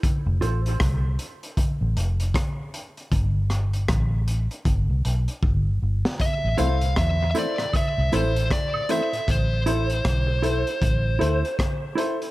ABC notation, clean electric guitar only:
X:1
M:4/4
L:1/8
Q:"Swing 16ths" 1/4=78
K:Am
V:1 name="Clean electric guitar"
z [FAc] z6 | z8 | z [EAc] z [EAc] z [EAc] z [EAc] | z [EAc] z [EAc] z [EAc] z [EAc] |]